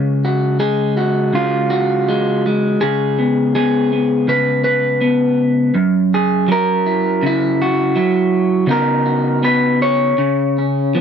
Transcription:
clean electric guitar
Already playing: C#3 G#3
0.25 F#4
0.59 G#3 G#4
0.97 F#4
1.33 C#3 F4
1.70 F#4
2.08 G#3
2.46 G#3
2.81 C#3 G#4
3.19 B3
3.55 B3 G#4
3.93 B3
4.28 C#3 B4
4.64 B4
5.01 B3
5.75 F#2
6.14 G#4
6.48 F#3 A#4
6.86 E4
7.23 C#3 E4
7.62 F#4
7.96 F#3 E4
8.67 C#3 B3 D#4 F#4
8.71 A#4
9.06 F#4
9.43 B3 B4
9.82 C#5
10.18 C#3
10.58 C#4
10.95 F3 B3

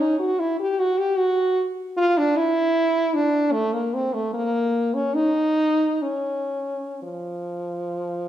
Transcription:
french horn
0.00 D#4
0.19 F#4
0.39 E4
0.59 G4
0.79 F#4
0.98 G4
1.18 F#4
1.97 F4
2.18 D4
2.37 E4
3.14 D4
3.52 A3
3.73 A#3
3.94 C4
4.14 A3
4.34 A#3
4.94 C#4
5.15 D#4
6.02 C#4
7.03 F3

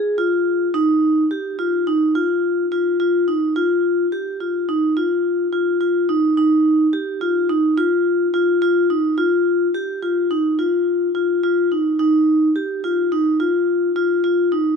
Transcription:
vibraphone
Already playing: G#4
0.18 F4
0.74 D#4
1.31 G4
1.59 F4
1.87 D#4
2.15 F4
2.72 F4
3.00 F4
3.28 D#4
3.56 F4
4.12 G4
4.40 F4
4.69 D#4
4.97 F4
5.53 F4
5.81 F4
6.09 D#4
6.37 D#4
6.93 G4
7.21 F4
7.49 D#4
7.78 F4
8.34 F4
8.62 F4
8.90 D#4
9.18 F4
9.74 G4
10.03 F4
10.31 D#4
10.59 F4
11.15 F4
11.43 F4
11.72 D#4
11.99 D#4
12.56 G4
12.84 F4
13.12 D#4
13.40 F4
13.96 F4
14.24 F4
14.52 D#4

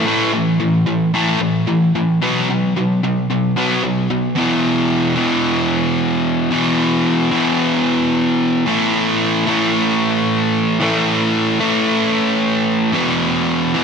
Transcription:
overdriven electric guitar
0.06 A2 E3 A3
0.33 A2 E3
0.60 A2 E3
0.86 A2 E3
1.14 A2 E3 A3
1.40 A2 E3
1.68 A2 E3
1.95 A2 E3
2.22 B2 F#3 B3
2.49 B2 F#3
2.76 B2 F#3
3.03 B2 F#3
3.30 B2 F#3
3.56 B2 F#3 B3
3.83 B2 F#3
4.10 B2 F#3
4.36 E2 B2 E3
5.16 E2 B2 E3
6.51 E2 B2 E3
7.31 E2 B2 E3
8.66 A2 E3 A3
9.47 A2 E3 A3
10.80 A2 E3 A3
11.60 A2 E3 A3
12.93 E2 B2 E3
13.74 E2 B2 E3

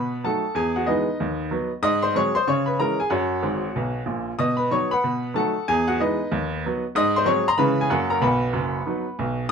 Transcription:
upright piano
Already playing: B2 B4 F#5 B5
0.24 F#3 A3 D#4 A4 F#5 A5
0.55 E2 G#4 G#5
0.76 F#4 F#5
0.86 E3 G#3 B3 D#4 B4 D#5
1.20 D#2
1.51 F#3 B3
1.83 G#2 D#5 D#6
2.02 C5 C6
2.15 F#3 G#3 C4 C#5 C#6
2.35 C5 C6
2.47 C#3 C#5 C#6
2.66 B4 B5
2.79 E3 G#3 C#4 A#4 A#5
3.00 G#4 G#5
3.10 F#2 F#4 C#5 F#5
3.43 G#1 G#2
3.76 B1 B2
4.06 A#1 A#2
4.39 B2 D#5 D#6
4.57 B4 B5
4.71 F#3 B3 D#4 C#5 C#6
4.91 B4 F#5 B5
5.04 B2
5.34 F#3 A3 D#4 A4 F#5 A5
5.68 E2 G#4 G#5
5.88 F#4 F#5
6.00 E3 G#3 B3 D#4 B4 D#5
6.32 D#2
6.66 F#3 B3
6.95 G#2 D#5 D#6
7.16 C5 C6
7.25 F#3 G#3 C4 C#5 C#6
7.48 A#5 C6
7.58 C#3 E3 G#3 C#4 B4 B5
7.81 G#4 G#5
7.90 F#2 F#3 A#3 C#4 F#4 F#5
8.10 A#4 A#5
8.21 B1 B2 B4 F#5 B5
8.53 F#1 F#2
8.86 F#3 B3 D#4
9.19 B1 B2

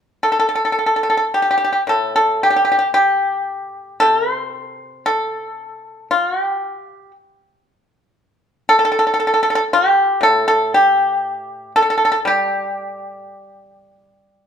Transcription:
pipa
0.23 A4
0.32 A4
0.40 A4
0.49 A4
0.55 A4
0.65 A4
0.72 A4
0.79 A4
0.86 A4
0.96 A4
1.03 A4
1.10 A4
1.17 A4
1.34 G4
1.42 G4
1.51 G4
1.58 G4
1.64 G4
1.73 G4
1.87 A2 A4
2.16 A4
2.43 G4
2.50 G4
2.56 G4
2.65 G4
2.72 G4
2.79 G4
2.94 G4
4.00 C3 A4
4.33 C5
5.06 A4
6.11 F4
6.41 G4
8.69 A4
8.79 A4
8.85 A4
8.92 A4
8.99 A4
9.07 A4
9.14 A4
9.20 A4
9.27 A4
9.34 A4
9.43 A4
9.50 A4
9.55 A4
9.73 G4
10.21 A2 A4
10.48 A4
10.74 G4
11.76 A4
11.82 A4
11.90 A4
11.98 A4
12.05 A4
12.12 A4
12.25 G3 G4

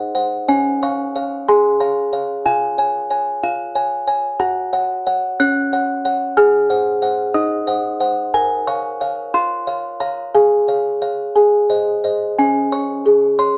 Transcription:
music box
Already playing: C5 F#5 G#5
0.15 C5 F#5
0.48 C#4 C#5 G#5
0.83 C#5 F5 C#6
1.16 C#5 F5
1.48 G#4 G#5 C6
1.80 C#5 F5 A#5
2.13 C#5 F5
2.46 F4 F5 G#5
2.78 C#5 G#5
3.10 C#5 G#5
3.43 F4 F5
3.75 C#5 G#5
4.07 C#5 G#5
4.40 F#4 F#5 A#5
4.73 C#5 F#5
5.07 C#5 F#5
5.40 C#4 C#5 F#6
5.73 C#5 F#5
6.05 C#5 F#5
6.37 G#4 G#5 F6
6.70 C5 F#5
7.02 C5 F#5
7.34 D#4 D#5 D#6
7.67 C5 F#5
8.00 C5 F#5
8.34 A#4 G#5 A#5
8.67 C#5 F5 C#6
9.01 C#5 F5
9.34 F4 F5 C6
9.67 C#5 F5
10.00 C#5 F5 A#5
10.34 G#4 F5 G#5
10.68 C#5 F5
11.02 C#5 F5
11.36 G#4 G#5
11.70 C5 D#5
12.04 C5 D#5
12.38 C#4 G#5
12.72 C#5 C#6
13.06 G#4
13.39 C#5 C6

